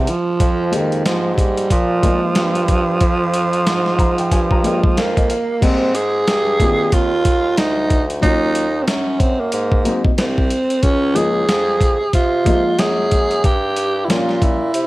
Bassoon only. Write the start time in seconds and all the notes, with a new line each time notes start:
Already playing: E2
0.40 F2
1.05 G#2
1.71 A#2
2.23 G2
2.36 G2
3.01 F2
3.67 G#2
4.32 G2
4.84 F2
4.97 F2
5.62 G#2
6.28 G2
6.92 D#2
7.58 D2
8.23 D#2
8.88 F#2
9.53 G#2
10.05 C2
10.17 C2
10.83 C#2
11.48 F2
12.01 C3
12.13 C3
12.66 F#2
12.79 F#2
13.44 G2
14.10 A#2
14.75 C3